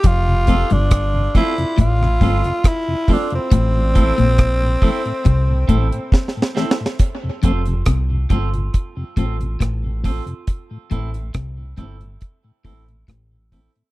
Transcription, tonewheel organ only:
\new Staff \with { instrumentName = "Tonewheel organ" } { \clef bass \time 4/4 \key f \major \tempo 4 = 69 << { r8 <f a c'>8 r8 <f a c'>8 r8 <f a c'>8 r8 <f a c'>8 | r8 <e a c'>8 r8 <e a c'>8 r8 <e a c'>8 r8 <e a c'>8 | r8 <f a c'>8 r8 <f a c'>8 r8 <f a c'>8 r8 <f a c'>8 | r8 <e a c'>8 r8 <e a c'>8 r8 <e a c'>8 r8 <e a c'>8 | } \\ { r16 <f, c>16 r16 <f, c>16 r16 <f, c>16 r16 <f, c>16 r16 <f, c>16 r16 <f, c>16 r16 <f, c>16 r16 <f, c>16 | r16 a,16 r16 a,16 r16 a,16 r16 a,16 r16 a,16 r16 a,16 r16 a,16 r16 a,16 | r16 <f, c>16 r16 <f, c>16 r16 <f, c>16 r16 <f, c>16 r16 <f, c>16 r16 <f, c>16 r16 <f, c>16 r16 <f, c>16 | r16 a,16 r16 a,16 r16 a,16 r16 a,16 r16 a,16 r16 a,16 r16 a,16 r16 a,16 | } >> }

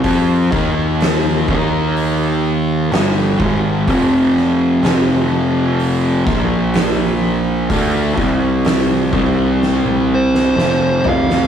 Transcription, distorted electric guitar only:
\new Staff \with { instrumentName = "Distorted electric guitar" } { \clef bass \time 4/4 \key f \major \tempo 4 = 63 <f c' f'>8 <ees bes ees'>4 <ees bes ees'>4. <g, d g>8 <gis, ees gis>8 | <f, c f>4 <f, c f>4. <bes, f bes>4. | <d a d'>8 <c g c'>4 <c g c'>4. <f, c f>8 <f, c f>8 | }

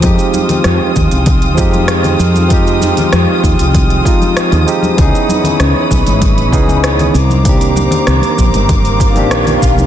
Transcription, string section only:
\new Staff \with { instrumentName = "String section" } { \time 4/4 \key f \minor \tempo 4 = 97 << { ees'''1~ | ees'''1~ | ees'''2.~ ees'''8 d'''8~ | d'''1 | } \\ { <aes f' g''>1~ | <aes f' g''>1 | <fes des'' ces'''>2.~ <fes des'' ces'''>8 <ees c'' bes''>8~ | <ees c'' bes''>1 | } >> }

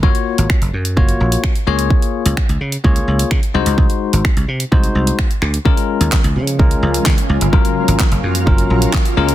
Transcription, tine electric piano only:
\new Staff \with { instrumentName = "Tine electric piano" } { \time 4/4 \key des \major \tempo 4 = 128 <bes f' ges' des''>4 r4 <bes f' ges' des''>4 r8 <bes f' aes' des''>8~ | <bes f' aes' des''>4 r4 <bes f' aes' des''>4 r8 <aes ees' ges' c''>8~ | <aes ees' ges' c''>4 r4 <aes ees' ges' c''>4 r4 | <aes des' f' bes'>4 r4 <aes des' f' bes'>4 r4 |
<ges des' f' bes'>4 r4 <ges des' f' bes'>4 r8 <aes des' f' bes'>8 | }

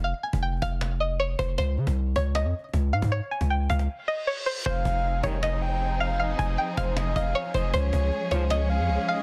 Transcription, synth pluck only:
\new Staff \with { instrumentName = "Synth pluck" } { \time 4/4 \key f \minor \tempo 4 = 156 f''8 aes''8 g''8 f''4 ees''8 des''8 c''8 | c''4. des''8 ees''4. f''8 | des''8 aes''8 g''8 f''4 ees''8 des''8 c''8 | c''4. des''8 ees''4. f''8 |
f''8 aes''8 g''8 f''4 ees''8 des''8 c''8 | c''4. des''8 ees''4. f''8 | }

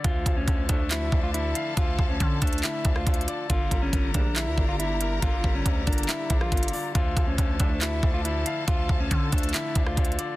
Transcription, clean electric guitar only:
\new Staff \with { instrumentName = "Clean electric guitar" } { \time 4/4 \key d \minor \tempo 4 = 139 f'8. cis'8. d'8 e'8. f'16 e'4 | f'8. cis'8. d'8 e'8. f'4~ f'16 | f'8. cis'8. d'8 e'8. f'16 e'4 | f'8. cis'8. d'8 e'8. f'4~ f'16 |
f'8. cis'8. d'8 e'8. f'16 e'4 | f'8. cis'8. d'8 e'8. f'4~ f'16 | }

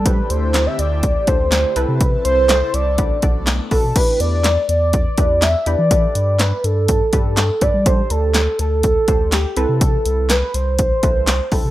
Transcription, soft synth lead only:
\new Staff \with { instrumentName = "Soft synth lead" } { \time 4/4 \key e \minor \tempo 4 = 123 b'8 c''8. e''16 d''4 c''4 b'8~ | b'8 c''4 d''4. r8 a'8 | b'8 d''4 d''4. e''8 d''8~ | d''4 b'8 a'2 d''8 |
c''8 a'4 a'4. g'8 a'8~ | a'4 b'8 c''2 a'8 | }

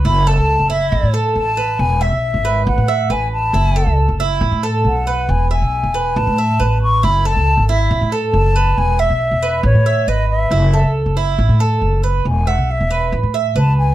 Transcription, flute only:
\new Staff \with { instrumentName = "Flute" } { \time 4/4 \key a \lydian \tempo 4 = 138 b''8 a''4 e''4 r8 a''4 | gis''8 e''4. fis''4 gis''8 a''8~ | a''4 r2 fis''4 | gis''8 gis''4. a''4. cis'''8 |
b''8 a''4 e''4 r8 a''4 | gis''8 e''4. cis''4 dis''8 e''8~ | e''4 r2. | gis''8 fis''8 e''4 r4 a''8 gis''8 | }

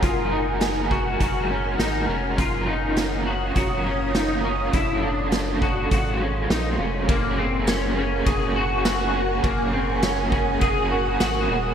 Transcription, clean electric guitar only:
\new Staff \with { instrumentName = "Clean electric guitar" } { \time 4/4 \key ges \lydian \tempo 4 = 102 f'8 ees'4 ges'8 ges'8 des'8 ees'8 des'8 | f'8 ees'4 ges'8 ges'8 des'8 ees'8 des'8 | fes'8 d'4 fis'8 ges'8 des'8 ees'8 des'8 | bes8 c'8 des'8 des'8 aes'8 ges'8 ges'4 |
bes8 c'8 des'8 des'8 aes'8 ges'8 ges'4 | }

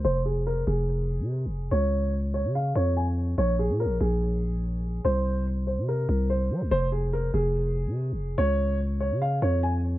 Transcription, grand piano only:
\new Staff \with { instrumentName = "Grand piano" } { \time 4/4 \key f \minor \tempo 4 = 144 c''8 aes'8 bes'8 aes'2~ aes'8 | des''4 r8 des''8 f''8 des''8 aes''8 r8 | des''8 aes'8 bes'8 aes'2~ aes'8 | c''4 r8 c''8 bes'4 c''4 |
c''8 aes'8 bes'8 aes'2~ aes'8 | des''4 r8 des''8 f''8 des''8 aes''8 r8 | }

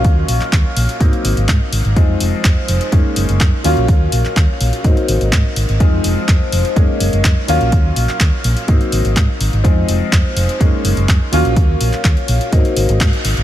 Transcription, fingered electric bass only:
\new Staff \with { instrumentName = "Fingered electric bass" } { \clef bass \time 4/4 \key ees \dorian \tempo 4 = 125 ees,16 r16 bes,,16 r16 ees,16 r16 bes,,16 r16 aes,16 r16 aes,,16 aes,,16 aes,16 r16 aes,,16 aes,,16 | f,16 r16 f,,16 r16 f,16 r16 f,,16 r16 ges,16 r16 ges,,16 ges,,16 ges,16 r16 ees,16 bes,,16 | ees,16 r16 bes,,16 r16 ees,16 r16 bes,,16 r16 aes,16 r16 aes,,16 aes,,16 aes,16 r16 aes,,16 aes,,16 | f,16 r16 f,,16 r16 f,16 r16 f,,16 r16 ges,16 r16 ges,,16 ges,,16 ges,16 r16 ees,16 bes,,16 |
ees,16 r16 bes,,16 r16 ees,16 r16 bes,,16 r16 aes,16 r16 aes,,16 aes,,16 aes,16 r16 aes,,16 aes,,16 | f,16 r16 f,,16 r16 f,16 r16 f,,16 r16 ges,16 r16 ges,,16 ges,,16 ges,16 r16 ees,16 bes,,16 | ees,16 r16 bes,,16 r16 ees,16 r16 bes,,16 r16 aes,16 r16 aes,,16 aes,,16 aes,16 r16 aes,,16 aes,,16 | }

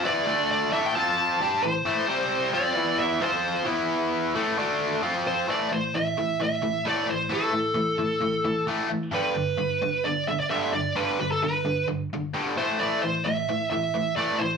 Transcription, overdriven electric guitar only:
\new Staff \with { instrumentName = "Overdriven electric guitar" } { \clef bass \time 4/4 \key a \minor \tempo 4 = 132 <e b e'>8 <d a d'>4 <a, e a>8 <f c' f'>4 <g d' g'>8 <a, e>8 | <a, e a>8 <c g c'>4 <f c' f'>8 <e b e'>4 <f c' f'>4 | <e b e'>4. <a, e a>8 <d a d'>4 <f c' f'>4 | <a, e a>8 <a, e>8 <a, e>8 <a, e>8 <a, e>8 <a, e>8 <a, e a>8 <a, e>8 |
<a, e a>8 <a, e>8 <a, e>8 <a, e>8 <a, e>8 <a, e>8 <a, e a>8 <a, e>8 | <g, d g>8 <g, d>8 <g, d>8 <g, d>8 <g, d>8 <g, d>8 <g, d g>8 <g, d>8 | <g, d g>8 <g, d>8 <g, d>8 <g, d>8 <g, d>8 <g, d>8 <g, d g>8 <a, e a>8 | <a, e a>8 <a, e>8 <a, e>8 <a, e>8 <a, e>8 <a, e>8 <a, e a>8 <a, e>8 | }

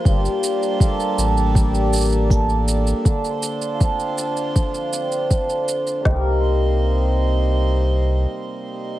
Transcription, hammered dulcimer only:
\new Staff \with { instrumentName = "Hammered dulcimer" } { \time 4/4 \key c \dorian \tempo 4 = 80 g,4 <bes d' a'>8 d'8 g8 bes8 <bes d' a'>4 | d4 <c' d' a'>8 d'8 f8 c'8 <c' d' a'>4 | <c g bes ees' bes'>1 | }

